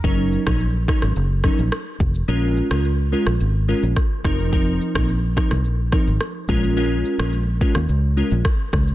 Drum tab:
SH |x-xxx-xxx-xxx-xx|x-xxx-xxx-xxx-xx|x-xxx-xxx-xxx-xx|x-xxx-xxx-xxx-xx|
SD |---r--rr--r-r---|---r---r----r-r-|---r--rr--r-r---|---r---r----r-r-|
BD |o--o--o---o---o-|------------o-o-|o--o--o---o---o-|------o-----o-o-|